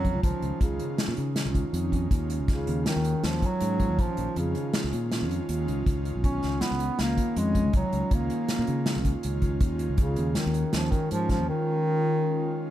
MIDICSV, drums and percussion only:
0, 0, Header, 1, 2, 480
1, 0, Start_track
1, 0, Key_signature, -6, "minor"
1, 0, Tempo, 374766
1, 305, Time_signature, 5, 2, 24, 8
1, 16270, End_track
2, 0, Start_track
2, 0, Title_t, "Drums"
2, 59, Note_on_c, 9, 36, 58
2, 61, Note_on_c, 9, 42, 46
2, 187, Note_off_c, 9, 36, 0
2, 189, Note_off_c, 9, 42, 0
2, 299, Note_on_c, 9, 36, 88
2, 300, Note_on_c, 9, 42, 65
2, 428, Note_off_c, 9, 36, 0
2, 428, Note_off_c, 9, 42, 0
2, 544, Note_on_c, 9, 42, 50
2, 672, Note_off_c, 9, 42, 0
2, 778, Note_on_c, 9, 42, 67
2, 779, Note_on_c, 9, 36, 85
2, 906, Note_off_c, 9, 42, 0
2, 907, Note_off_c, 9, 36, 0
2, 1018, Note_on_c, 9, 42, 52
2, 1146, Note_off_c, 9, 42, 0
2, 1260, Note_on_c, 9, 38, 95
2, 1260, Note_on_c, 9, 42, 79
2, 1388, Note_off_c, 9, 38, 0
2, 1388, Note_off_c, 9, 42, 0
2, 1497, Note_on_c, 9, 42, 50
2, 1625, Note_off_c, 9, 42, 0
2, 1739, Note_on_c, 9, 38, 78
2, 1739, Note_on_c, 9, 42, 74
2, 1867, Note_off_c, 9, 38, 0
2, 1867, Note_off_c, 9, 42, 0
2, 1980, Note_on_c, 9, 36, 56
2, 1985, Note_on_c, 9, 42, 57
2, 2109, Note_off_c, 9, 36, 0
2, 2113, Note_off_c, 9, 42, 0
2, 2224, Note_on_c, 9, 42, 66
2, 2353, Note_off_c, 9, 42, 0
2, 2462, Note_on_c, 9, 36, 55
2, 2469, Note_on_c, 9, 42, 51
2, 2590, Note_off_c, 9, 36, 0
2, 2597, Note_off_c, 9, 42, 0
2, 2701, Note_on_c, 9, 36, 86
2, 2703, Note_on_c, 9, 42, 67
2, 2829, Note_off_c, 9, 36, 0
2, 2831, Note_off_c, 9, 42, 0
2, 2943, Note_on_c, 9, 42, 50
2, 3071, Note_off_c, 9, 42, 0
2, 3179, Note_on_c, 9, 38, 31
2, 3179, Note_on_c, 9, 42, 66
2, 3180, Note_on_c, 9, 36, 85
2, 3307, Note_off_c, 9, 38, 0
2, 3307, Note_off_c, 9, 42, 0
2, 3308, Note_off_c, 9, 36, 0
2, 3422, Note_on_c, 9, 42, 48
2, 3550, Note_off_c, 9, 42, 0
2, 3661, Note_on_c, 9, 38, 94
2, 3661, Note_on_c, 9, 42, 70
2, 3789, Note_off_c, 9, 38, 0
2, 3789, Note_off_c, 9, 42, 0
2, 3899, Note_on_c, 9, 42, 50
2, 4027, Note_off_c, 9, 42, 0
2, 4144, Note_on_c, 9, 38, 90
2, 4144, Note_on_c, 9, 42, 60
2, 4272, Note_off_c, 9, 38, 0
2, 4272, Note_off_c, 9, 42, 0
2, 4384, Note_on_c, 9, 36, 61
2, 4384, Note_on_c, 9, 42, 51
2, 4512, Note_off_c, 9, 36, 0
2, 4512, Note_off_c, 9, 42, 0
2, 4618, Note_on_c, 9, 42, 67
2, 4746, Note_off_c, 9, 42, 0
2, 4862, Note_on_c, 9, 42, 52
2, 4864, Note_on_c, 9, 36, 58
2, 4990, Note_off_c, 9, 42, 0
2, 4992, Note_off_c, 9, 36, 0
2, 5105, Note_on_c, 9, 36, 86
2, 5106, Note_on_c, 9, 42, 67
2, 5233, Note_off_c, 9, 36, 0
2, 5234, Note_off_c, 9, 42, 0
2, 5342, Note_on_c, 9, 42, 49
2, 5470, Note_off_c, 9, 42, 0
2, 5587, Note_on_c, 9, 42, 67
2, 5715, Note_off_c, 9, 42, 0
2, 5826, Note_on_c, 9, 42, 53
2, 5954, Note_off_c, 9, 42, 0
2, 6064, Note_on_c, 9, 38, 102
2, 6064, Note_on_c, 9, 42, 83
2, 6193, Note_off_c, 9, 38, 0
2, 6193, Note_off_c, 9, 42, 0
2, 6310, Note_on_c, 9, 42, 54
2, 6438, Note_off_c, 9, 42, 0
2, 6552, Note_on_c, 9, 38, 84
2, 6552, Note_on_c, 9, 42, 59
2, 6680, Note_off_c, 9, 38, 0
2, 6680, Note_off_c, 9, 42, 0
2, 6798, Note_on_c, 9, 42, 49
2, 6926, Note_off_c, 9, 42, 0
2, 7029, Note_on_c, 9, 42, 69
2, 7157, Note_off_c, 9, 42, 0
2, 7278, Note_on_c, 9, 42, 49
2, 7406, Note_off_c, 9, 42, 0
2, 7511, Note_on_c, 9, 36, 91
2, 7513, Note_on_c, 9, 42, 68
2, 7639, Note_off_c, 9, 36, 0
2, 7641, Note_off_c, 9, 42, 0
2, 7754, Note_on_c, 9, 42, 49
2, 7882, Note_off_c, 9, 42, 0
2, 7991, Note_on_c, 9, 36, 82
2, 7993, Note_on_c, 9, 42, 63
2, 8119, Note_off_c, 9, 36, 0
2, 8121, Note_off_c, 9, 42, 0
2, 8231, Note_on_c, 9, 38, 29
2, 8231, Note_on_c, 9, 42, 47
2, 8359, Note_off_c, 9, 38, 0
2, 8359, Note_off_c, 9, 42, 0
2, 8466, Note_on_c, 9, 38, 94
2, 8466, Note_on_c, 9, 42, 64
2, 8594, Note_off_c, 9, 38, 0
2, 8594, Note_off_c, 9, 42, 0
2, 8708, Note_on_c, 9, 42, 54
2, 8836, Note_off_c, 9, 42, 0
2, 8948, Note_on_c, 9, 38, 87
2, 8948, Note_on_c, 9, 42, 63
2, 9076, Note_off_c, 9, 38, 0
2, 9076, Note_off_c, 9, 42, 0
2, 9189, Note_on_c, 9, 36, 57
2, 9190, Note_on_c, 9, 42, 55
2, 9317, Note_off_c, 9, 36, 0
2, 9318, Note_off_c, 9, 42, 0
2, 9432, Note_on_c, 9, 42, 69
2, 9560, Note_off_c, 9, 42, 0
2, 9669, Note_on_c, 9, 36, 56
2, 9671, Note_on_c, 9, 42, 52
2, 9797, Note_off_c, 9, 36, 0
2, 9799, Note_off_c, 9, 42, 0
2, 9904, Note_on_c, 9, 42, 63
2, 9909, Note_on_c, 9, 36, 92
2, 10032, Note_off_c, 9, 42, 0
2, 10037, Note_off_c, 9, 36, 0
2, 10151, Note_on_c, 9, 42, 52
2, 10280, Note_off_c, 9, 42, 0
2, 10389, Note_on_c, 9, 42, 73
2, 10390, Note_on_c, 9, 36, 84
2, 10517, Note_off_c, 9, 42, 0
2, 10518, Note_off_c, 9, 36, 0
2, 10629, Note_on_c, 9, 42, 47
2, 10757, Note_off_c, 9, 42, 0
2, 10867, Note_on_c, 9, 38, 88
2, 10867, Note_on_c, 9, 42, 80
2, 10995, Note_off_c, 9, 38, 0
2, 10995, Note_off_c, 9, 42, 0
2, 11106, Note_on_c, 9, 42, 51
2, 11234, Note_off_c, 9, 42, 0
2, 11345, Note_on_c, 9, 38, 87
2, 11345, Note_on_c, 9, 42, 64
2, 11473, Note_off_c, 9, 38, 0
2, 11473, Note_off_c, 9, 42, 0
2, 11588, Note_on_c, 9, 36, 62
2, 11588, Note_on_c, 9, 42, 57
2, 11716, Note_off_c, 9, 36, 0
2, 11716, Note_off_c, 9, 42, 0
2, 11824, Note_on_c, 9, 42, 64
2, 11952, Note_off_c, 9, 42, 0
2, 12062, Note_on_c, 9, 42, 42
2, 12066, Note_on_c, 9, 36, 54
2, 12190, Note_off_c, 9, 42, 0
2, 12194, Note_off_c, 9, 36, 0
2, 12303, Note_on_c, 9, 42, 65
2, 12305, Note_on_c, 9, 36, 93
2, 12431, Note_off_c, 9, 42, 0
2, 12433, Note_off_c, 9, 36, 0
2, 12541, Note_on_c, 9, 42, 50
2, 12669, Note_off_c, 9, 42, 0
2, 12777, Note_on_c, 9, 42, 70
2, 12782, Note_on_c, 9, 36, 99
2, 12905, Note_off_c, 9, 42, 0
2, 12910, Note_off_c, 9, 36, 0
2, 13018, Note_on_c, 9, 42, 53
2, 13146, Note_off_c, 9, 42, 0
2, 13258, Note_on_c, 9, 38, 96
2, 13258, Note_on_c, 9, 42, 70
2, 13386, Note_off_c, 9, 38, 0
2, 13386, Note_off_c, 9, 42, 0
2, 13501, Note_on_c, 9, 42, 58
2, 13629, Note_off_c, 9, 42, 0
2, 13740, Note_on_c, 9, 38, 85
2, 13740, Note_on_c, 9, 42, 66
2, 13868, Note_off_c, 9, 38, 0
2, 13868, Note_off_c, 9, 42, 0
2, 13985, Note_on_c, 9, 36, 62
2, 13988, Note_on_c, 9, 42, 53
2, 14113, Note_off_c, 9, 36, 0
2, 14116, Note_off_c, 9, 42, 0
2, 14229, Note_on_c, 9, 42, 69
2, 14357, Note_off_c, 9, 42, 0
2, 14464, Note_on_c, 9, 36, 56
2, 14466, Note_on_c, 9, 38, 25
2, 14466, Note_on_c, 9, 42, 47
2, 14592, Note_off_c, 9, 36, 0
2, 14594, Note_off_c, 9, 38, 0
2, 14594, Note_off_c, 9, 42, 0
2, 16270, End_track
0, 0, End_of_file